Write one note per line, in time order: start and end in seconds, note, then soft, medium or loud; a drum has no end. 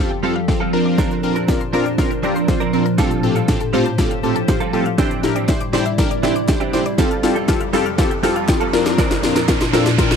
0.00 0.72 F2 medium
0.00 4.94 F3 medium
0.00 0.72 G4 medium
0.00 0.72 A4 medium
0.10 0.21 G5 medium
0.10 muted clean electric guitar stroke soft
0.23 0.40 G3 medium
0.23 0.34 C4 medium
0.23 0.35 C4 medium
0.23 0.34 F4 medium
0.23 0.35 F4 medium
0.23 0.35 G4 medium
0.23 0.35 A4 medium
0.23 0.34 A4 medium
0.23 0.33 F6 medium
0.35 0.46 F5 medium
0.35 muted clean electric guitar stroke soft
0.48 0.59 C4 medium
0.48 0.60 F4 medium
0.48 0.60 G4 medium
0.48 0.60 A4 medium
0.48 0.58 G5 medium
0.48 muted clean electric guitar stroke soft
0.48 kick loud
0.48 snare medium
0.60 0.72 G3 medium
0.60 0.72 C4 medium
0.60 0.74 F4 medium
0.60 0.74 A4 medium
0.60 0.71 F6 medium
0.73 2.96 A#2 medium
0.73 0.86 F3 medium
0.73 1.13 C4 medium
0.73 0.85 C4 medium
0.73 1.13 D4 medium
0.73 2.96 D4 medium
0.73 0.85 D4 medium
0.73 1.13 F4 medium
0.73 0.83 A#4 medium
0.73 1.13 A#4 loud
0.73 0.84 A#4 medium
0.73 2.96 C5 medium
0.85 0.96 D5 medium
0.85 muted clean electric guitar stroke soft
0.98 1.21 F3 medium
0.98 1.21 C4 medium
0.98 1.22 D4 medium
0.98 1.08 A#4 medium
0.98 1.22 A#4 medium
0.98 kick loud
0.98 snare medium
0.98 shaker medium
1.11 shaker medium
1.23 1.34 C4 medium
1.23 1.35 D4 medium
1.23 1.35 F4 medium
1.23 1.35 A#4 loud
1.23 muted clean electric guitar stroke soft
1.23 shaker medium
1.35 1.50 F3 medium
1.35 1.49 C4 medium
1.35 1.49 D4 medium
1.35 1.49 A#4 medium
1.35 1.46 A#4 medium
1.35 shaker medium
1.48 1.59 C4 medium
1.48 1.60 D4 medium
1.48 1.60 F4 medium
1.48 1.60 A#4 loud
1.48 1.58 D5 medium
1.48 kick loud
1.48 snare medium
1.48 shaker medium
1.60 1.71 C6 medium
1.60 muted clean electric guitar stroke soft
1.60 shaker medium
1.73 1.90 F3 medium
1.73 1.85 C4 loud
1.73 1.85 C4 medium
1.73 1.85 D4 loud
1.73 1.85 D4 medium
1.73 1.85 F4 loud
1.73 1.83 A#4 medium
1.73 1.85 A#4 loud
1.73 1.84 A#4 loud
1.73 shaker medium
1.85 1.96 D5 medium
1.85 muted clean electric guitar stroke medium
1.85 shaker medium
1.98 2.10 C4 loud
1.98 2.10 D4 loud
1.98 2.10 F4 loud
1.98 2.10 A#4 loud
1.98 2.08 C6 medium
1.98 muted clean electric guitar stroke soft
1.98 kick loud
1.98 snare medium
1.98 shaker medium
2.10 2.21 A#4 medium
2.10 muted clean electric guitar stroke medium
2.10 shaker medium
2.23 2.36 F3 medium
2.23 2.34 C4 medium
2.23 2.35 C4 medium
2.23 2.35 D4 medium
2.23 2.35 D4 loud
2.23 2.35 F4 medium
2.23 2.35 G4 medium
2.23 2.34 A#4 medium
2.23 2.33 D5 medium
2.23 shaker medium
2.35 2.47 F3 soft
2.35 2.47 C4 medium
2.35 2.48 D4 medium
2.35 2.48 A#4 medium
2.35 2.46 C6 medium
2.35 shaker medium
2.48 2.59 C4 medium
2.48 2.60 D4 medium
2.48 2.60 F4 medium
2.48 2.60 C5 medium
2.48 muted clean electric guitar stroke soft
2.48 kick loud
2.48 snare medium
2.48 shaker medium
2.60 2.72 F3 medium
2.60 2.72 C4 medium
2.60 2.73 D4 medium
2.60 2.73 A#4 medium
2.60 2.71 D5 medium
2.60 shaker medium
2.73 2.86 F3 medium
2.73 2.85 C4 medium
2.73 2.85 D4 medium
2.73 2.85 F4 medium
2.73 2.85 A#4 loud
2.73 2.84 A#4 medium
2.73 2.83 C6 medium
2.73 shaker soft
2.85 2.96 A#4 medium
2.85 muted clean electric guitar stroke soft
2.85 shaker medium
2.98 3.09 A2 loud
2.98 4.96 A2 medium
2.98 3.21 G3 medium
2.98 3.10 C4 loud
2.98 3.21 C4 loud
2.98 3.10 F4 loud
2.98 3.22 F4 medium
2.98 4.96 G4 medium
2.98 3.10 G4 loud
2.98 3.10 A4 loud
2.98 3.22 A4 loud
2.98 4.96 C5 medium
2.98 3.08 F5 medium
2.98 kick loud
2.98 snare medium
2.98 closed hi-hat medium
2.98 shaker medium
3.11 3.21 A5 medium
3.11 closed hi-hat medium
3.11 shaker medium
3.23 3.34 A2 medium
3.23 3.35 C4 medium
3.23 3.35 F4 medium
3.23 3.35 G4 medium
3.23 3.33 A4 medium
3.23 3.35 A4 loud
3.23 muted clean electric guitar stroke soft
3.23 shaker medium
3.35 3.50 G3 medium
3.35 3.49 C4 medium
3.35 3.49 F4 medium
3.35 3.49 A4 medium
3.35 3.46 F5 medium
3.35 closed hi-hat medium
3.35 shaker medium
3.48 3.60 A2 medium
3.48 3.60 C4 medium
3.48 3.60 F4 medium
3.48 3.60 G4 medium
3.48 3.60 A4 loud
3.48 3.58 A5 medium
3.48 kick loud
3.48 snare medium
3.48 closed hi-hat medium
3.48 shaker medium
3.60 3.71 A4 medium
3.60 muted clean electric guitar stroke soft
3.60 closed hi-hat medium
3.60 shaker medium
3.73 3.84 A2 loud
3.73 3.90 G3 medium
3.73 3.85 C4 loud
3.73 3.85 C4 medium
3.73 3.85 F4 loud
3.73 3.85 F4 medium
3.73 3.85 G4 loud
3.73 3.84 A4 loud
3.73 3.85 C5 loud
3.73 3.83 F5 medium
3.73 shaker medium
3.85 3.96 A5 medium
3.85 muted clean electric guitar stroke medium
3.85 closed hi-hat soft
3.85 shaker medium
3.98 4.09 A2 loud
3.98 4.10 C4 loud
3.98 4.10 F4 loud
3.98 4.10 G4 loud
3.98 4.08 A4 medium
3.98 4.10 A4 loud
3.98 muted clean electric guitar stroke soft
3.98 kick loud
3.98 snare medium
3.98 closed hi-hat medium
3.98 shaker medium
4.11 4.21 F5 medium
4.11 muted clean electric guitar stroke soft
4.11 closed hi-hat medium
4.11 shaker medium
4.23 4.35 A2 medium
4.23 4.35 C4 medium
4.23 4.35 F4 medium
4.23 4.35 G4 medium
4.23 4.35 A4 loud
4.23 4.33 A5 medium
4.23 shaker medium
4.36 4.46 A4 medium
4.36 muted clean electric guitar stroke soft
4.36 closed hi-hat medium
4.36 shaker medium
4.48 4.60 A2 medium
4.48 4.60 C4 medium
4.48 4.60 F4 medium
4.48 4.60 G4 medium
4.48 4.60 C5 loud
4.48 4.58 F5 medium
4.48 muted clean electric guitar stroke soft
4.48 kick loud
4.48 snare medium
4.48 closed hi-hat medium
4.48 shaker medium
4.60 4.72 G3 medium
4.60 4.72 C4 medium
4.60 4.73 F4 medium
4.60 4.73 A4 medium
4.60 4.71 A5 medium
4.60 closed hi-hat medium
4.60 shaker medium
4.73 4.84 A2 medium
4.73 4.86 G3 medium
4.73 4.85 C4 medium
4.73 4.85 F4 medium
4.73 4.85 G4 medium
4.73 4.83 A4 medium
4.73 4.85 A4 loud
4.73 4.84 A4 medium
4.73 shaker soft
4.85 4.96 F5 medium
4.85 muted clean electric guitar stroke soft
4.85 closed hi-hat medium
4.85 shaker medium
4.98 6.96 C3 medium
4.98 5.21 E3 medium
4.98 6.96 G3 medium
4.98 5.21 C4 medium
4.98 5.09 D4 loud
4.98 5.22 D4 loud
4.98 5.10 E4 loud
4.98 6.96 E4 medium
4.98 5.10 G4 loud
4.98 5.22 G4 loud
4.98 5.10 C5 loud
4.98 5.08 D5 medium
4.98 6.96 D5 medium
4.98 kick loud
4.98 snare medium
4.98 closed hi-hat medium
4.98 riser medium
4.98 shaker medium
5.11 closed hi-hat medium
5.11 shaker medium
5.23 5.34 D4 medium
5.23 5.35 E4 medium
5.23 5.35 G4 medium
5.23 5.35 A#4 loud
5.23 muted clean electric guitar stroke soft
5.23 snare medium
5.23 shaker medium
5.35 5.50 E3 medium
5.35 5.49 C4 medium
5.35 5.49 D4 medium
5.35 5.49 G4 medium
5.35 5.46 D5 medium
5.35 closed hi-hat medium
5.35 shaker medium
5.48 5.59 D4 medium
5.48 5.60 E4 medium
5.48 5.60 G4 medium
5.48 5.60 C5 loud
5.48 5.58 E5 medium
5.48 kick loud
5.48 snare medium
5.48 clap medium
5.48 closed hi-hat medium
5.48 shaker medium
5.61 5.71 D6 medium
5.61 muted clean electric guitar stroke soft
5.61 closed hi-hat medium
5.61 shaker medium
5.73 5.90 E3 medium
5.73 5.85 C4 medium
5.73 5.84 D4 loud
5.73 5.85 D4 medium
5.73 5.85 E4 loud
5.73 5.85 G4 loud
5.73 5.84 G4 medium
5.73 5.85 C5 loud
5.73 5.83 D5 medium
5.73 snare medium
5.73 shaker medium
5.85 5.96 E5 medium
5.85 muted clean electric guitar stroke soft
5.85 closed hi-hat soft
5.85 shaker medium
5.98 6.09 D4 loud
5.98 6.10 E4 loud
5.98 6.10 G4 loud
5.98 6.10 A#4 loud
5.98 6.08 D6 medium
5.98 muted clean electric guitar stroke soft
5.98 kick loud
5.98 snare medium
5.98 closed hi-hat medium
5.98 shaker medium
6.10 6.21 D5 medium
6.10 muted clean electric guitar stroke soft
6.10 closed hi-hat medium
6.10 shaker medium
6.23 6.40 E3 medium
6.23 6.35 C4 medium
6.23 6.34 D4 medium
6.23 6.35 D4 medium
6.23 6.35 E4 medium
6.23 6.35 G4 medium
6.23 6.34 G4 medium
6.23 6.35 C5 medium
6.23 6.33 E5 medium
6.23 snare medium
6.23 shaker medium
6.35 6.46 D6 medium
6.35 muted clean electric guitar stroke soft
6.35 closed hi-hat medium
6.35 shaker medium
6.48 6.59 D4 medium
6.48 6.60 E4 medium
6.48 6.60 G4 medium
6.48 6.60 C5 loud
6.48 muted clean electric guitar stroke soft
6.48 kick loud
6.48 snare medium
6.48 clap medium
6.48 closed hi-hat medium
6.48 shaker medium
6.60 6.72 E3 medium
6.60 6.72 C4 medium
6.60 6.73 D4 medium
6.60 6.73 G4 medium
6.60 6.71 E5 medium
6.60 closed hi-hat medium
6.60 shaker medium
6.73 6.86 E3 medium
6.73 6.86 C4 medium
6.73 6.84 D4 medium
6.73 6.85 D4 medium
6.73 6.85 E4 medium
6.73 6.85 G4 medium
6.73 6.84 G4 medium
6.73 6.85 C5 loud
6.73 6.83 D6 medium
6.73 snare medium
6.73 shaker soft
6.86 6.96 D5 medium
6.86 muted clean electric guitar stroke medium
6.86 closed hi-hat soft
6.86 shaker medium
6.98 8.71 F2 medium
6.98 10.16 F3 medium
6.98 7.21 G3 medium
6.98 7.09 C4 loud
6.98 7.21 C4 medium
6.98 7.09 F4 loud
6.98 7.22 F4 medium
6.98 8.72 G4 medium
6.98 7.10 G4 loud
6.98 8.71 A4 medium
6.98 7.10 A4 loud
6.98 7.22 A4 loud
6.98 7.08 G5 medium
6.98 kick loud
6.98 snare medium
6.98 closed hi-hat medium
6.98 shaker medium
7.11 7.21 F6 medium
7.11 closed hi-hat medium
7.11 shaker medium
7.23 7.34 C4 medium
7.23 7.35 F4 medium
7.23 7.35 G4 medium
7.23 7.35 A4 loud
7.23 7.33 F5 medium
7.23 muted clean electric guitar stroke soft
7.23 snare medium
7.23 open hi-hat medium
7.23 shaker medium
7.35 7.50 G3 medium
7.35 7.49 C4 medium
7.35 7.49 F4 medium
7.35 7.49 A4 medium
7.35 7.46 G5 medium
7.35 closed hi-hat medium
7.35 shaker medium
7.48 7.59 C4 medium
7.48 7.59 F4 medium
7.48 7.60 G4 medium
7.48 7.60 A4 loud
7.48 7.58 F6 medium
7.48 kick loud
7.48 snare loud
7.48 clap medium
7.48 closed hi-hat medium
7.48 shaker medium
7.61 7.71 F5 medium
7.61 muted clean electric guitar stroke medium
7.61 closed hi-hat medium
7.61 shaker medium
7.73 7.90 G3 medium
7.73 7.84 C4 loud
7.73 7.85 C4 medium
7.73 7.84 F4 loud
7.73 7.85 F4 medium
7.73 7.85 G4 loud
7.73 7.85 A4 loud
7.73 7.84 A4 medium
7.73 7.83 G5 medium
7.73 snare medium
7.73 open hi-hat medium
7.73 shaker medium
7.85 7.96 F6 medium
7.85 muted clean electric guitar stroke soft
7.85 closed hi-hat medium
7.85 shaker medium
7.98 8.09 C4 loud
7.98 8.09 F4 loud
7.98 8.10 G4 loud
7.98 8.10 A4 loud
7.98 8.08 F5 medium
7.98 muted clean electric guitar stroke soft
7.98 kick loud
7.98 snare loud
7.98 closed hi-hat medium
7.98 shaker medium
8.11 8.21 G5 medium
8.11 muted clean electric guitar stroke medium
8.11 closed hi-hat medium
8.11 shaker medium
8.23 8.36 G3 medium
8.23 8.34 C4 medium
8.23 8.35 C4 medium
8.23 8.34 F4 medium
8.23 8.35 F4 medium
8.23 8.35 G4 medium
8.23 8.35 A4 medium
8.23 8.34 A4 medium
8.23 8.33 F6 medium
8.23 snare medium
8.23 open hi-hat medium
8.23 shaker medium
8.35 8.47 G3 medium
8.35 8.47 C4 medium
8.35 8.48 F4 medium
8.35 8.48 A4 medium
8.35 8.46 F5 medium
8.35 closed hi-hat medium
8.35 shaker medium
8.48 8.59 C4 medium
8.48 8.59 F4 medium
8.48 8.60 G4 medium
8.48 8.60 A4 loud
8.48 8.58 G5 medium
8.48 kick loud
8.48 snare loud
8.48 clap medium
8.48 closed hi-hat medium
8.48 shaker medium
8.60 8.73 G3 medium
8.60 8.72 C4 medium
8.60 8.74 F4 medium
8.60 8.74 A4 medium
8.60 8.71 F6 medium
8.60 closed hi-hat medium
8.60 shaker medium
8.73 10.16 A#2 medium
8.73 8.86 F3 medium
8.73 9.13 C4 medium
8.73 8.86 C4 medium
8.73 9.13 D4 medium
8.73 10.16 D4 medium
8.73 8.85 D4 medium
8.73 9.13 F4 medium
8.73 8.83 A#4 medium
8.73 9.13 A#4 loud
8.73 8.84 A#4 medium
8.73 10.16 C5 medium
8.73 snare loud
8.73 open hi-hat medium
8.73 shaker soft
8.86 8.96 D5 medium
8.86 muted clean electric guitar stroke soft
8.86 snare loud
8.86 closed hi-hat medium
8.86 shaker medium
8.98 9.21 F3 loud
8.98 9.21 C4 medium
8.98 9.22 D4 loud
8.98 9.08 A#4 medium
8.98 9.22 A#4 loud
8.98 kick loud
8.98 snare loud
8.98 closed hi-hat medium
8.98 shaker medium
9.11 snare loud
9.11 closed hi-hat medium
9.11 shaker medium
9.23 9.34 C4 medium
9.23 9.34 D4 medium
9.23 9.35 F4 medium
9.23 9.35 A#4 loud
9.23 muted clean electric guitar stroke soft
9.23 snare loud
9.23 open hi-hat medium
9.23 shaker medium
9.35 9.50 F3 medium
9.35 9.49 C4 medium
9.35 9.49 D4 medium
9.35 9.49 A#4 medium
9.35 9.46 A#4 medium
9.35 snare loud
9.35 closed hi-hat medium
9.35 shaker medium
9.48 9.59 C4 medium
9.48 9.59 D4 medium
9.48 9.60 F4 medium
9.48 9.60 A#4 loud
9.48 9.58 D5 medium
9.48 kick loud
9.48 snare loud
9.48 clap medium
9.48 closed hi-hat medium
9.48 shaker medium
9.61 9.71 C6 medium
9.61 muted clean electric guitar stroke medium
9.61 snare loud
9.61 closed hi-hat medium
9.61 shaker medium
9.73 9.90 F3 medium
9.73 9.84 C4 loud
9.73 9.85 C4 medium
9.73 9.84 D4 loud
9.73 9.85 D4 medium
9.73 9.85 F4 loud
9.73 9.85 A4 loud
9.73 9.83 A#4 medium
9.73 9.84 A#4 medium
9.73 snare loud
9.73 open hi-hat medium
9.73 shaker medium
9.85 9.96 D5 medium
9.85 muted clean electric guitar stroke medium
9.85 snare loud
9.85 closed hi-hat medium
9.85 shaker medium
9.98 10.09 C4 loud
9.98 10.09 D4 loud
9.98 10.10 F4 loud
9.98 10.10 A#4 loud
9.98 10.08 C6 medium
9.98 muted clean electric guitar stroke soft
9.98 kick loud
9.98 snare loud
9.98 closed hi-hat medium
9.98 shaker medium
10.10 10.16 A#4 medium
10.10 muted clean electric guitar stroke medium
10.10 snare loud
10.10 closed hi-hat medium
10.10 shaker medium